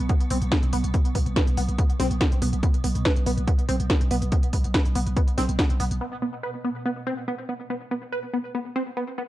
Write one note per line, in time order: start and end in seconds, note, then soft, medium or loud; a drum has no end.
0.00 6.06 B2 medium
0.00 6.05 B3 medium
0.09 0.14 B3 medium
0.09 kick loud
0.09 closed hi-hat medium
0.20 closed hi-hat medium
0.30 0.41 B1 loud
0.30 0.38 C4 loud
0.30 open hi-hat loud
0.42 0.52 B1 medium
0.42 closed hi-hat medium
0.52 0.59 B3 medium
0.52 kick loud
0.52 snare loud
0.52 closed hi-hat medium
0.63 0.72 B1 medium
0.63 closed hi-hat medium
0.73 0.83 B1 loud
0.73 0.78 B3 medium
0.73 open hi-hat loud
0.84 0.94 B1 medium
0.84 closed hi-hat medium
0.94 0.99 B3 medium
0.94 kick loud
0.94 closed hi-hat medium
1.05 closed hi-hat medium
1.15 1.26 B1 loud
1.15 1.18 B3 medium
1.15 kick medium
1.15 open hi-hat loud
1.26 1.36 B1 medium
1.26 closed hi-hat medium
1.36 1.43 B4 medium
1.36 kick loud
1.36 snare loud
1.36 closed hi-hat medium
1.47 1.57 B1 medium
1.47 closed hi-hat soft
1.57 1.68 B1 loud
1.57 1.62 B3 medium
1.57 open hi-hat loud
1.69 1.78 B1 medium
1.69 closed hi-hat soft
1.78 1.83 B3 medium
1.78 kick loud
1.78 closed hi-hat medium
1.90 closed hi-hat soft
2.00 2.10 B1 loud
2.00 2.07 C4 loud
2.00 snare soft
2.00 open hi-hat loud
2.11 2.21 B1 medium
2.11 closed hi-hat soft
2.21 2.28 B3 medium
2.21 kick loud
2.21 snare loud
2.21 closed hi-hat medium
2.32 2.41 B1 medium
2.32 closed hi-hat medium
2.42 2.52 B1 loud
2.42 2.47 B3 medium
2.42 open hi-hat loud
2.53 2.63 B1 medium
2.53 closed hi-hat medium
2.63 2.68 B3 medium
2.63 kick loud
2.63 closed hi-hat medium
2.74 closed hi-hat medium
2.84 2.95 B1 loud
2.84 2.87 B3 medium
2.84 open hi-hat loud
2.95 3.05 B1 medium
2.95 closed hi-hat medium
3.05 3.12 B4 medium
3.05 kick loud
3.05 snare loud
3.05 closed hi-hat medium
3.16 3.26 B1 medium
3.16 closed hi-hat medium
3.26 3.37 B1 loud
3.26 3.31 B3 medium
3.26 open hi-hat loud
3.38 3.47 B1 medium
3.38 closed hi-hat medium
3.48 3.52 B3 medium
3.48 kick loud
3.48 closed hi-hat medium
3.59 closed hi-hat medium
3.69 3.79 B1 loud
3.69 3.76 C4 loud
3.69 open hi-hat loud
3.80 3.90 B1 medium
3.80 closed hi-hat soft
3.90 3.97 B3 medium
3.90 kick loud
3.90 snare loud
3.90 closed hi-hat medium
4.01 4.10 B1 medium
4.01 closed hi-hat medium
4.11 4.22 B1 loud
4.11 4.16 B3 medium
4.11 open hi-hat loud
4.22 4.32 B1 medium
4.22 closed hi-hat medium
4.32 4.37 B3 medium
4.32 kick loud
4.32 closed hi-hat medium
4.43 closed hi-hat medium
4.53 4.64 B1 loud
4.53 4.56 B3 medium
4.53 kick medium
4.53 open hi-hat loud
4.64 4.74 B1 medium
4.64 closed hi-hat medium
4.74 4.81 B4 medium
4.74 kick loud
4.74 snare loud
4.74 closed hi-hat medium
4.85 4.95 B1 medium
4.85 closed hi-hat medium
4.95 5.06 B1 loud
4.95 5.00 B3 medium
4.95 open hi-hat loud
5.07 5.16 B1 medium
5.07 closed hi-hat medium
5.17 5.21 B3 medium
5.17 kick loud
5.17 closed hi-hat medium
5.28 closed hi-hat medium
5.38 5.48 B1 loud
5.38 5.45 C4 loud
5.38 snare soft
5.38 open hi-hat loud
5.49 5.59 B1 medium
5.49 closed hi-hat medium
5.59 5.66 B3 medium
5.59 kick loud
5.59 snare loud
5.59 closed hi-hat medium
5.70 5.79 B1 medium
5.70 closed hi-hat medium
5.80 5.90 B1 loud
5.80 5.85 B3 medium
5.80 open hi-hat loud
5.91 6.01 B1 medium
5.91 closed hi-hat medium
6.01 6.06 B3 medium
6.22 6.25 B3 medium
6.43 6.50 B4 medium
6.64 6.69 B3 medium
6.86 6.90 B3 medium
7.07 7.14 C4 loud
7.28 7.35 B3 medium
7.49 7.54 B3 medium
7.70 7.75 B3 medium
7.91 7.94 B3 medium
8.12 8.19 B4 medium
8.34 8.38 B3 medium
8.55 8.59 B3 medium
8.76 8.83 C4 loud
8.97 9.04 B3 medium
9.18 9.23 B3 medium